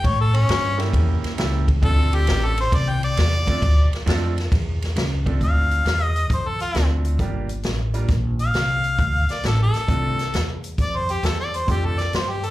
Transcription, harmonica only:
0.07 C#5
0.21 A4
0.36 C#4
1.85 A4
2.15 G4
2.45 A4
2.61 C5
2.75 D5
2.89 G5
3.04 D5
5.45 F5
6.04 D#5
6.34 C5
6.48 A4
6.62 F4
8.42 F5
9.32 D5
9.47 A4
9.63 A4
10.82 D5
10.96 C5
11.12 G4
11.25 A4
11.40 D5
11.56 C5
11.71 G4
11.86 A4
12.01 D5
12.16 C5
12.30 G4
12.46 A4

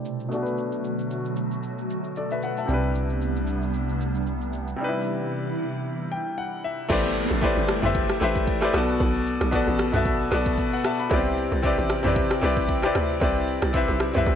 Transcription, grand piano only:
Already playing: A3 E4 G4 B4 C5 D5
0.29 B2 A3 D4
0.34 F#4 A4
0.43 B4
2.17 A4 D5
2.32 B4 E5
2.44 B4 F#5
2.58 E5 A5
2.66 C3 G3
2.70 D4 E4 B4
4.76 C3 G3
4.80 D4 D#4 B4
4.89 E4
6.12 G5
6.38 F#5
6.64 E5
6.89 A3 E4 G4 B4 C5 D5
7.41 A3 E4 G4 B4 C5
7.45 D5
7.82 A3 E4 G4 B4 C5 E5
8.20 A3 E4 G4 B4 C5
8.24 E5
8.61 A3 E4 G4 B4 C5 D5
8.72 B2 B3 F#4 A4 D5
9.51 B2 B3 F#4 A4 D5
9.92 B2 B3 F#4 A4 E5
10.31 B2 B3 F#4 A4 D5
10.73 B4 F#5
10.85 E5 A5
11.00 F#5 B5
11.10 C3 B3 E4 G4 B4 D5
11.17 C4
11.62 C3 C4 E4 G4 B4 D5
12.03 C3 C4 E4 G4 B4 D5
12.41 C3 C4 E4 G4 B4 D5
12.82 C3 C4 E4 G4 B4
12.86 D5
13.20 C3 C4 E4 B4 D5
13.73 C3 C4 E4 B4
13.77 E5
14.13 C3 C4 E4 B4
14.18 E5

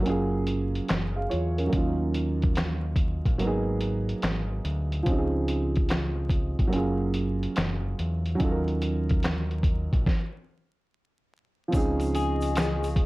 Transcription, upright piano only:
0.00 F#3 A#3
0.05 C#4 F4
0.09 G#4
1.16 G#4 F5
1.29 F4 C#5
1.58 C#4 A#4
1.67 F#3 A#3
1.72 C#4 D#4
1.76 F4
3.38 F#3 A#3
3.42 B3 D#4
3.47 G#4
5.03 F3 C4
5.08 C#4 D#4
5.12 G4
5.19 G#4
6.68 F#3 A#3
6.72 C#4 F4
6.77 G#4
8.35 F#3 C#4
8.40 D#4 F4
8.44 A4
8.51 A#4
11.68 F3 C4
11.73 C#4 D#4
11.77 G#4

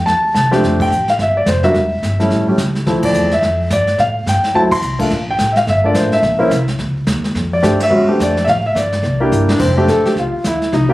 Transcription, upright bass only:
0.07 E2
0.35 C2
0.63 F1
0.90 A1
1.19 G1
1.46 F1
1.74 E1
2.02 G1
2.30 A1
2.58 C#2
2.87 D2
3.13 E2
3.42 F2
3.70 G2
3.98 A2
4.26 G2
4.43 muted upright bass stroke
4.54 D2
4.82 C2
5.10 A#1
5.39 A1
5.67 G1
5.94 A1
6.22 A#1
6.51 C2
6.79 C#2
7.07 D#2
7.35 F2
7.63 G2
7.90 E2
8.20 F2
8.47 A2
8.75 G2
9.03 C2
9.32 G1
9.60 F1
9.88 A#1
10.06 muted upright bass stroke
10.16 C2
10.33 muted upright bass stroke
10.44 D2
10.72 C2

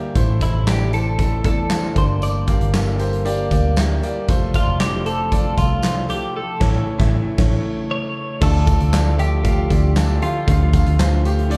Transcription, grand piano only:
Already playing: G2 A#3 G4 A4 D5 E5
0.15 A2 A3 E4 C5
0.41 A3 E4 C5
0.67 A3 E4 D5
0.93 A3 E4 C5
1.19 A3 E4 A4
1.45 A3 E4 D5
1.70 A3 E4 C5
1.96 G2 A#3 G4 D5
2.47 A#3 G4 F5
2.73 A#3 G4 A4
2.99 A#3 G4 C5
3.25 A#3 G4 D5
3.51 A#3 G4 D5
3.77 A#3 G4 E5
4.03 A#3 G4 D5
4.29 A3 F4 C5
4.55 A3 F4 D5
4.80 A3 F4 C5
5.05 A3 F4 C5
5.31 A3 F4 D5
5.57 A3 F4 D5
5.83 A3 F4 C5
6.09 A3 F4 G4
6.60 A3 E4 C#5
6.98 A3 E4 E5
7.38 A3 E4 C#5
8.41 D3 A3 F4 D5
8.66 A3 F4 D5
8.92 A3 F4 D5
9.17 A3 F4 E5
9.44 A3 F4 F5
9.70 A3 F4 D5
9.96 A3 F4 A4
10.22 A3 F4 G4
10.47 D3 A3 F4 F5
10.73 A3 F4 F5
10.99 A3 F4 C5
11.25 A3 F4 G4
11.50 A3 F4 D5

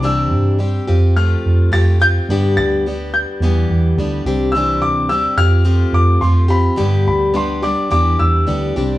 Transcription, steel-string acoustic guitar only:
0.02 C3 E3 G3 C4 D4 G4
0.59 G3 C4 D4 G4
0.87 C4 F4 G4
1.17 F3 A3 C4 F4 G4
1.72 A3 C4 F4 G4
2.00 C4 F4 G4
2.30 G2 D3 G3 B3 D4 G4
2.86 G3 B3 D4 G4
3.42 E3 G3 B3 D4 G4
3.98 G3 B3 D4 G4
4.26 G3 C4 D4 G4
4.55 C3 E3 G3 C4 D4 G4
5.10 G3 C4 D4 G4
5.38 C4 F4 G4
5.64 F3 A3 C4 F4 G4
6.22 A3 C4 F4 G4
6.48 C4 F4 G4
6.76 G2 D3 G3 B3 D4 G4
7.34 G3 B3 D4 G4
7.62 G3 B3 D4 G4
7.91 E3 G3 B3 D4 G4
8.47 G3 B3 D4 G4
8.76 G3 C4 D4 G4

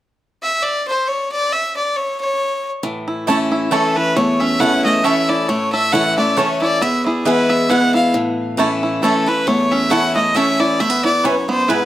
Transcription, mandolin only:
3.27 A3 E4 C#5 A5
3.71 A3 E4 C#5 A5
4.60 A3 E4 C#5 A5
5.04 A3 E4 C#5 A5
5.92 A3 E4 C#5 A5
6.37 A3 E4 C#5 A5
7.25 B3 E4 B4 G#5
7.69 B3 E4 B4 G#5
8.58 A3 E4 C#5 A5
9.02 A3 E4 C#5 A5
9.90 A3 E4 C#5 A5
10.35 A3 E4 C#5 A5
11.24 B3 E4 B4 G#5
11.68 B3 E4 B4 G#5

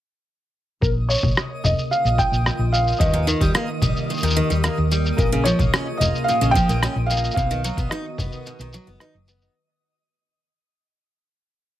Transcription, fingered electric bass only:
0.82 A#1
1.23 A#1
1.64 F1
2.05 A#1
2.32 A#1
2.59 A#1
3.00 D#2
3.41 D#2
3.82 A#1
4.23 D#2
4.50 D#2
4.78 D#2
5.18 A#1
5.59 A#1
6.00 F1
6.41 A#1
6.69 A#1
6.96 A#1
7.37 B1
7.77 B1
8.18 F#1
8.59 B1
8.87 F#1
9.14 F#1

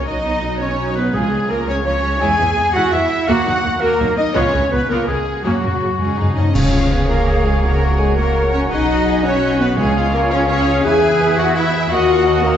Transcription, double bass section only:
0.08 B1
1.15 C#2
2.22 E2
2.40 E2
2.58 E2
2.75 E2
2.93 E2
3.29 D#2
3.46 D#2
3.65 D#2
3.82 D#2
4.00 D#2
4.35 C#2
4.54 C#2
4.72 C#2
4.90 C#2
5.09 C#2
5.45 F#2
5.63 F#2
5.82 F#2
6.00 F#2
6.19 F#2
6.54 C#2
8.70 B1
9.78 C#2
10.85 E2
11.92 D#2

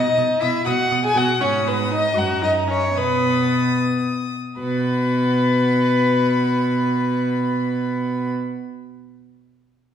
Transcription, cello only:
0.17 B2
0.42 B2
0.66 B2
0.91 B2
1.15 B2
1.41 G#2
2.16 F#2
2.97 B2
4.60 B2

